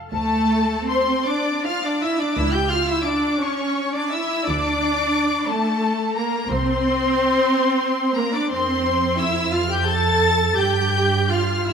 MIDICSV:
0, 0, Header, 1, 6, 480
1, 0, Start_track
1, 0, Key_signature, -1, "minor"
1, 0, Tempo, 768246
1, 73, Time_signature, 12, 3, 24, 8
1, 1030, Tempo, 710900
1, 1510, Tempo, 700935
1, 2950, Tempo, 672646
1, 6310, Tempo, 700117
1, 7270, Tempo, 739827
1, 8022, End_track
2, 0, Start_track
2, 0, Title_t, "Violin section"
2, 0, Program_c, 0, 48
2, 68, Note_on_c, 0, 81, 85
2, 527, Note_off_c, 0, 81, 0
2, 554, Note_on_c, 0, 84, 78
2, 792, Note_off_c, 0, 84, 0
2, 794, Note_on_c, 0, 86, 78
2, 1031, Note_off_c, 0, 86, 0
2, 1035, Note_on_c, 0, 89, 80
2, 1155, Note_off_c, 0, 89, 0
2, 1164, Note_on_c, 0, 86, 72
2, 1281, Note_off_c, 0, 86, 0
2, 1282, Note_on_c, 0, 88, 76
2, 1397, Note_off_c, 0, 88, 0
2, 1404, Note_on_c, 0, 86, 74
2, 1515, Note_off_c, 0, 86, 0
2, 1521, Note_on_c, 0, 88, 79
2, 1627, Note_on_c, 0, 91, 79
2, 1631, Note_off_c, 0, 88, 0
2, 1739, Note_on_c, 0, 89, 81
2, 1742, Note_off_c, 0, 91, 0
2, 1858, Note_off_c, 0, 89, 0
2, 1862, Note_on_c, 0, 88, 78
2, 1980, Note_off_c, 0, 88, 0
2, 1984, Note_on_c, 0, 86, 71
2, 2226, Note_off_c, 0, 86, 0
2, 2228, Note_on_c, 0, 85, 70
2, 2595, Note_off_c, 0, 85, 0
2, 2599, Note_on_c, 0, 86, 75
2, 2714, Note_off_c, 0, 86, 0
2, 2720, Note_on_c, 0, 88, 73
2, 2953, Note_off_c, 0, 88, 0
2, 2957, Note_on_c, 0, 86, 86
2, 3673, Note_on_c, 0, 81, 85
2, 3678, Note_off_c, 0, 86, 0
2, 4154, Note_off_c, 0, 81, 0
2, 4162, Note_on_c, 0, 82, 72
2, 4394, Note_off_c, 0, 82, 0
2, 4400, Note_on_c, 0, 84, 83
2, 5580, Note_off_c, 0, 84, 0
2, 5588, Note_on_c, 0, 82, 77
2, 5704, Note_off_c, 0, 82, 0
2, 5719, Note_on_c, 0, 86, 74
2, 5830, Note_off_c, 0, 86, 0
2, 5836, Note_on_c, 0, 84, 86
2, 6307, Note_off_c, 0, 84, 0
2, 6327, Note_on_c, 0, 88, 82
2, 6556, Note_off_c, 0, 88, 0
2, 6562, Note_on_c, 0, 89, 76
2, 6674, Note_off_c, 0, 89, 0
2, 6687, Note_on_c, 0, 91, 79
2, 6797, Note_off_c, 0, 91, 0
2, 6806, Note_on_c, 0, 93, 91
2, 7274, Note_on_c, 0, 91, 84
2, 7279, Note_off_c, 0, 93, 0
2, 7746, Note_off_c, 0, 91, 0
2, 7750, Note_on_c, 0, 89, 70
2, 7992, Note_off_c, 0, 89, 0
2, 7999, Note_on_c, 0, 88, 64
2, 8022, Note_off_c, 0, 88, 0
2, 8022, End_track
3, 0, Start_track
3, 0, Title_t, "Violin section"
3, 0, Program_c, 1, 48
3, 74, Note_on_c, 1, 69, 80
3, 530, Note_off_c, 1, 69, 0
3, 558, Note_on_c, 1, 72, 73
3, 792, Note_on_c, 1, 74, 65
3, 794, Note_off_c, 1, 72, 0
3, 1029, Note_off_c, 1, 74, 0
3, 1032, Note_on_c, 1, 77, 73
3, 1156, Note_off_c, 1, 77, 0
3, 1164, Note_on_c, 1, 74, 66
3, 1281, Note_off_c, 1, 74, 0
3, 1283, Note_on_c, 1, 76, 73
3, 1398, Note_off_c, 1, 76, 0
3, 1400, Note_on_c, 1, 74, 64
3, 1513, Note_off_c, 1, 74, 0
3, 1513, Note_on_c, 1, 76, 66
3, 1627, Note_off_c, 1, 76, 0
3, 1635, Note_on_c, 1, 79, 70
3, 1745, Note_on_c, 1, 77, 70
3, 1747, Note_off_c, 1, 79, 0
3, 1861, Note_off_c, 1, 77, 0
3, 1864, Note_on_c, 1, 76, 61
3, 1981, Note_off_c, 1, 76, 0
3, 1993, Note_on_c, 1, 74, 62
3, 2225, Note_on_c, 1, 73, 63
3, 2230, Note_off_c, 1, 74, 0
3, 2586, Note_off_c, 1, 73, 0
3, 2590, Note_on_c, 1, 74, 61
3, 2704, Note_on_c, 1, 76, 76
3, 2712, Note_off_c, 1, 74, 0
3, 2944, Note_on_c, 1, 74, 75
3, 2945, Note_off_c, 1, 76, 0
3, 3657, Note_off_c, 1, 74, 0
3, 3674, Note_on_c, 1, 69, 68
3, 4145, Note_off_c, 1, 69, 0
3, 4164, Note_on_c, 1, 70, 70
3, 4400, Note_off_c, 1, 70, 0
3, 4408, Note_on_c, 1, 72, 78
3, 5584, Note_off_c, 1, 72, 0
3, 5584, Note_on_c, 1, 70, 70
3, 5702, Note_off_c, 1, 70, 0
3, 5713, Note_on_c, 1, 74, 66
3, 5822, Note_on_c, 1, 72, 71
3, 5827, Note_off_c, 1, 74, 0
3, 6300, Note_off_c, 1, 72, 0
3, 6315, Note_on_c, 1, 76, 72
3, 6545, Note_off_c, 1, 76, 0
3, 6545, Note_on_c, 1, 77, 62
3, 6666, Note_off_c, 1, 77, 0
3, 6672, Note_on_c, 1, 79, 65
3, 6786, Note_on_c, 1, 81, 76
3, 6787, Note_off_c, 1, 79, 0
3, 7269, Note_off_c, 1, 81, 0
3, 7280, Note_on_c, 1, 79, 66
3, 7749, Note_off_c, 1, 79, 0
3, 7751, Note_on_c, 1, 77, 57
3, 7992, Note_off_c, 1, 77, 0
3, 7992, Note_on_c, 1, 76, 57
3, 8022, Note_off_c, 1, 76, 0
3, 8022, End_track
4, 0, Start_track
4, 0, Title_t, "Cello section"
4, 0, Program_c, 2, 48
4, 72, Note_on_c, 2, 57, 76
4, 529, Note_off_c, 2, 57, 0
4, 559, Note_on_c, 2, 60, 66
4, 795, Note_off_c, 2, 60, 0
4, 795, Note_on_c, 2, 62, 64
4, 1026, Note_off_c, 2, 62, 0
4, 1040, Note_on_c, 2, 65, 73
4, 1160, Note_off_c, 2, 65, 0
4, 1165, Note_on_c, 2, 62, 65
4, 1279, Note_off_c, 2, 62, 0
4, 1289, Note_on_c, 2, 64, 72
4, 1401, Note_off_c, 2, 64, 0
4, 1406, Note_on_c, 2, 62, 68
4, 1516, Note_off_c, 2, 62, 0
4, 1523, Note_on_c, 2, 64, 71
4, 1632, Note_off_c, 2, 64, 0
4, 1640, Note_on_c, 2, 67, 64
4, 1749, Note_off_c, 2, 67, 0
4, 1751, Note_on_c, 2, 65, 72
4, 1864, Note_off_c, 2, 65, 0
4, 1869, Note_on_c, 2, 64, 59
4, 1981, Note_off_c, 2, 64, 0
4, 1987, Note_on_c, 2, 62, 66
4, 2227, Note_off_c, 2, 62, 0
4, 2233, Note_on_c, 2, 61, 61
4, 2598, Note_off_c, 2, 61, 0
4, 2599, Note_on_c, 2, 62, 64
4, 2716, Note_off_c, 2, 62, 0
4, 2724, Note_on_c, 2, 64, 66
4, 2954, Note_on_c, 2, 62, 77
4, 2955, Note_off_c, 2, 64, 0
4, 3676, Note_off_c, 2, 62, 0
4, 3682, Note_on_c, 2, 57, 67
4, 4159, Note_off_c, 2, 57, 0
4, 4160, Note_on_c, 2, 58, 65
4, 4397, Note_off_c, 2, 58, 0
4, 4402, Note_on_c, 2, 60, 78
4, 5581, Note_off_c, 2, 60, 0
4, 5587, Note_on_c, 2, 58, 60
4, 5701, Note_off_c, 2, 58, 0
4, 5711, Note_on_c, 2, 62, 62
4, 5826, Note_off_c, 2, 62, 0
4, 5831, Note_on_c, 2, 60, 69
4, 6314, Note_off_c, 2, 60, 0
4, 6325, Note_on_c, 2, 64, 68
4, 6555, Note_off_c, 2, 64, 0
4, 6555, Note_on_c, 2, 65, 65
4, 6671, Note_off_c, 2, 65, 0
4, 6680, Note_on_c, 2, 67, 62
4, 6791, Note_off_c, 2, 67, 0
4, 6799, Note_on_c, 2, 69, 73
4, 7266, Note_off_c, 2, 69, 0
4, 7279, Note_on_c, 2, 67, 71
4, 7748, Note_off_c, 2, 67, 0
4, 7749, Note_on_c, 2, 65, 61
4, 7991, Note_off_c, 2, 65, 0
4, 7997, Note_on_c, 2, 64, 57
4, 8022, Note_off_c, 2, 64, 0
4, 8022, End_track
5, 0, Start_track
5, 0, Title_t, "Viola section"
5, 0, Program_c, 3, 48
5, 74, Note_on_c, 3, 57, 69
5, 530, Note_off_c, 3, 57, 0
5, 551, Note_on_c, 3, 60, 66
5, 791, Note_off_c, 3, 60, 0
5, 793, Note_on_c, 3, 62, 61
5, 1030, Note_off_c, 3, 62, 0
5, 1032, Note_on_c, 3, 65, 67
5, 1156, Note_off_c, 3, 65, 0
5, 1164, Note_on_c, 3, 62, 62
5, 1279, Note_off_c, 3, 62, 0
5, 1289, Note_on_c, 3, 64, 68
5, 1401, Note_off_c, 3, 64, 0
5, 1402, Note_on_c, 3, 62, 70
5, 1514, Note_off_c, 3, 62, 0
5, 1529, Note_on_c, 3, 64, 80
5, 1633, Note_on_c, 3, 67, 71
5, 1635, Note_off_c, 3, 64, 0
5, 1746, Note_off_c, 3, 67, 0
5, 1751, Note_on_c, 3, 65, 67
5, 1864, Note_off_c, 3, 65, 0
5, 1872, Note_on_c, 3, 64, 65
5, 1985, Note_off_c, 3, 64, 0
5, 1996, Note_on_c, 3, 62, 75
5, 2232, Note_off_c, 3, 62, 0
5, 2244, Note_on_c, 3, 61, 67
5, 2603, Note_off_c, 3, 61, 0
5, 2607, Note_on_c, 3, 62, 61
5, 2720, Note_off_c, 3, 62, 0
5, 2724, Note_on_c, 3, 64, 68
5, 2950, Note_off_c, 3, 64, 0
5, 2957, Note_on_c, 3, 62, 68
5, 3676, Note_on_c, 3, 57, 66
5, 3678, Note_off_c, 3, 62, 0
5, 4146, Note_off_c, 3, 57, 0
5, 4152, Note_on_c, 3, 58, 65
5, 4394, Note_off_c, 3, 58, 0
5, 4404, Note_on_c, 3, 60, 84
5, 5582, Note_off_c, 3, 60, 0
5, 5586, Note_on_c, 3, 58, 65
5, 5702, Note_on_c, 3, 62, 65
5, 5703, Note_off_c, 3, 58, 0
5, 5822, Note_off_c, 3, 62, 0
5, 5831, Note_on_c, 3, 60, 72
5, 6305, Note_off_c, 3, 60, 0
5, 6315, Note_on_c, 3, 64, 70
5, 6535, Note_on_c, 3, 65, 61
5, 6550, Note_off_c, 3, 64, 0
5, 6661, Note_off_c, 3, 65, 0
5, 6663, Note_on_c, 3, 67, 66
5, 6778, Note_on_c, 3, 69, 77
5, 6785, Note_off_c, 3, 67, 0
5, 7261, Note_on_c, 3, 67, 72
5, 7265, Note_off_c, 3, 69, 0
5, 7730, Note_off_c, 3, 67, 0
5, 7732, Note_on_c, 3, 65, 65
5, 7979, Note_on_c, 3, 64, 60
5, 7983, Note_off_c, 3, 65, 0
5, 8022, Note_off_c, 3, 64, 0
5, 8022, End_track
6, 0, Start_track
6, 0, Title_t, "Double bass section"
6, 0, Program_c, 4, 48
6, 77, Note_on_c, 4, 38, 74
6, 662, Note_off_c, 4, 38, 0
6, 1511, Note_on_c, 4, 37, 76
6, 2085, Note_off_c, 4, 37, 0
6, 2957, Note_on_c, 4, 38, 70
6, 3541, Note_off_c, 4, 38, 0
6, 4400, Note_on_c, 4, 36, 72
6, 4966, Note_off_c, 4, 36, 0
6, 5830, Note_on_c, 4, 41, 62
6, 7247, Note_off_c, 4, 41, 0
6, 7274, Note_on_c, 4, 43, 60
6, 7991, Note_off_c, 4, 43, 0
6, 7997, Note_on_c, 4, 33, 52
6, 8022, Note_off_c, 4, 33, 0
6, 8022, End_track
0, 0, End_of_file